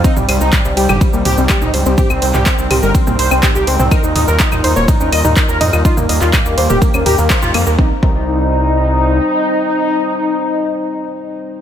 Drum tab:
RD |x-x-x-x-x-x-x-x-|x-x-x-x-x-x-x-x-|x-x-x-x-x-x-x-x-|x-x-x-x-x-x-x-x-|
HH |--o---o---o---o-|--o---o---o---o-|--o---o---o---o-|--o---o---o---o-|
SH |xx-xxx-xxx-xxx-x|xx-xxx-xxx-xxx-x|xx-xxx-xxx-xxx-x|xx-xxx-xxx-xxx-x|
CL |--x----x----x---|-x----x----x----|x----x----x----x|----x----x----x-|
CP |----x-------x---|---xx-------x---|----x-------x---|---xx-------x---|
T2 |-o--o--o--o--o--|o--o--o--o--o--o|--o--o--o--o--o-|-o--o--o--o--o--|
BD |o---o---o---o---|o---o---o---o---|o---o---o---o---|o---o---o---o---|

RD |----------------|----------------|
HH |----------------|----------------|
SH |----------------|----------------|
CL |----------------|----------------|
CP |----------------|----------------|
T2 |----------------|----------------|
BD |o-o-------------|----------------|